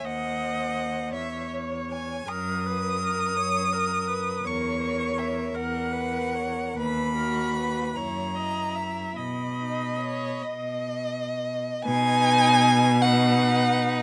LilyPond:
<<
  \new Staff \with { instrumentName = "Violin" } { \time 6/8 \key b \major \tempo 4. = 52 fis''4. e''8 r8 gis''8 | dis'''2. | cis'''4 e''8 fis''4. | b''4. ais''4. |
b''4. r4. | b'4. b'4. | }
  \new Staff \with { instrumentName = "Viola" } { \time 6/8 \key b \major dis''4. cis''4. | ais'8 b'8 ais'8 cis''8 ais'8 b'8 | cis''4. ais'8 b'8 cis''8 | b'8 ais'8 b'8 cis''8 dis''8 e''8 |
dis''2~ dis''16 r8. | dis'4. dis'4. | }
  \new Staff \with { instrumentName = "Violin" } { \time 6/8 \key b \major bis'4. cis''4. | r8 ais'4. ais'4 | ais'8 ais'4. ais'4 | r8 fis'4 e'8 e'4 |
r8 dis'8 cis''8 dis''4. | gis''4. fis''4. | }
  \new Staff \with { instrumentName = "Cello" } { \clef bass \time 6/8 \key b \major dis,4. e,4. | fis,4. fis,4. | e,4. e,4. | dis,4. fis,4. |
b,4. b,4. | b,2. | }
>>